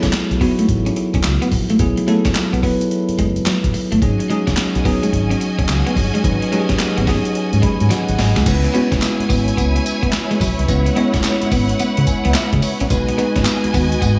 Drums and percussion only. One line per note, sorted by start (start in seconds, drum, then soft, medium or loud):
0.03 kick medium
0.03 snare medium
0.03 closed hi-hat medium
0.13 snare loud
0.13 clap medium
0.13 closed hi-hat medium
0.31 closed hi-hat medium
0.41 kick loud
0.41 open hi-hat medium
0.59 closed hi-hat medium
0.69 kick medium
0.69 closed hi-hat medium
0.86 closed hi-hat medium
0.96 closed hi-hat medium
1.14 kick loud
1.14 closed hi-hat medium
1.23 snare loud
1.23 clap medium
1.23 closed hi-hat medium
1.42 closed hi-hat medium
1.52 kick medium
1.52 open hi-hat medium
1.70 closed hi-hat medium
1.79 kick loud
1.79 closed hi-hat medium
1.97 closed hi-hat medium
2.08 closed hi-hat medium
2.25 kick medium
2.25 snare medium
2.25 closed hi-hat medium
2.35 snare loud
2.35 clap medium
2.35 closed hi-hat medium
2.54 closed hi-hat medium
2.63 kick loud
2.63 open hi-hat medium
2.81 closed hi-hat medium
2.91 closed hi-hat medium
3.09 closed hi-hat medium
3.19 kick medium
3.19 closed hi-hat medium
3.36 closed hi-hat soft
3.46 snare loud
3.46 clap medium
3.46 closed hi-hat loud
3.64 kick medium
3.64 closed hi-hat medium
3.74 open hi-hat medium
3.92 closed hi-hat medium
4.02 kick loud
4.02 closed hi-hat medium
4.20 closed hi-hat medium
4.30 closed hi-hat medium
4.47 kick medium
4.47 snare medium
4.47 closed hi-hat medium
4.57 snare loud
4.57 clap medium
4.57 closed hi-hat medium
4.75 closed hi-hat medium
4.85 kick loud
4.85 open hi-hat medium
5.03 closed hi-hat medium
5.13 kick medium
5.13 closed hi-hat medium
5.31 closed hi-hat medium
5.41 closed hi-hat medium
5.59 kick medium
5.59 closed hi-hat soft
5.68 snare loud
5.68 clap medium
5.68 closed hi-hat loud
5.87 closed hi-hat medium
5.96 kick medium
5.96 open hi-hat medium
6.15 closed hi-hat medium
6.24 kick loud
6.24 closed hi-hat medium
6.42 closed hi-hat medium
6.53 closed hi-hat medium
6.69 kick loud
6.69 snare medium
6.69 closed hi-hat medium
6.79 snare loud
6.79 clap medium
6.79 closed hi-hat medium
6.98 closed hi-hat medium
7.07 kick loud
7.07 snare medium
7.07 open hi-hat medium
7.25 closed hi-hat medium
7.35 closed hi-hat medium
7.53 closed hi-hat medium
7.63 kick loud
7.63 closed hi-hat medium
7.80 closed hi-hat medium
7.90 snare medium
7.90 closed hi-hat medium
8.09 closed hi-hat medium
8.19 snare medium
8.19 open hi-hat medium
8.36 snare medium
8.36 closed hi-hat medium
8.46 kick loud
8.46 closed hi-hat medium
8.46 crash loud
8.46 tambourine medium
8.64 closed hi-hat medium
8.75 closed hi-hat medium
8.92 kick loud
8.92 snare medium
8.92 closed hi-hat medium
9.02 snare loud
9.02 clap medium
9.02 closed hi-hat medium
9.02 tambourine loud
9.20 closed hi-hat medium
9.30 kick loud
9.30 open hi-hat medium
9.30 tambourine medium
9.48 closed hi-hat medium
9.57 kick medium
9.57 closed hi-hat medium
9.57 tambourine medium
9.76 closed hi-hat medium
9.86 closed hi-hat medium
9.86 tambourine medium
10.03 kick loud
10.03 closed hi-hat soft
10.12 snare loud
10.12 clap medium
10.12 closed hi-hat loud
10.12 tambourine medium
10.31 closed hi-hat medium
10.40 kick loud
10.40 open hi-hat medium
10.40 tambourine medium
10.59 closed hi-hat medium
10.68 kick loud
10.68 closed hi-hat medium
10.68 tambourine medium
10.86 closed hi-hat medium
10.97 closed hi-hat medium
11.14 kick loud
11.14 snare medium
11.14 closed hi-hat medium
11.23 snare loud
11.23 clap medium
11.23 closed hi-hat medium
11.23 tambourine loud
11.42 closed hi-hat medium
11.52 kick loud
11.52 open hi-hat medium
11.52 tambourine medium
11.69 closed hi-hat medium
11.79 closed hi-hat medium
11.79 tambourine medium
11.97 closed hi-hat medium
12.07 kick medium
12.07 closed hi-hat medium
12.07 tambourine medium
12.25 closed hi-hat soft
12.34 snare loud
12.34 clap medium
12.34 closed hi-hat loud
12.34 tambourine medium
12.53 kick medium
12.53 closed hi-hat medium
12.62 open hi-hat medium
12.62 tambourine medium
12.80 closed hi-hat medium
12.90 kick loud
12.90 closed hi-hat medium
12.90 tambourine medium
13.08 closed hi-hat medium
13.19 closed hi-hat medium
13.36 kick loud
13.36 snare medium
13.36 closed hi-hat medium
13.45 snare loud
13.45 clap loud
13.45 closed hi-hat medium
13.45 tambourine loud
13.64 closed hi-hat medium
13.74 kick loud
13.74 open hi-hat medium
13.74 tambourine medium
13.92 closed hi-hat medium
14.02 kick medium
14.02 closed hi-hat medium
14.02 tambourine medium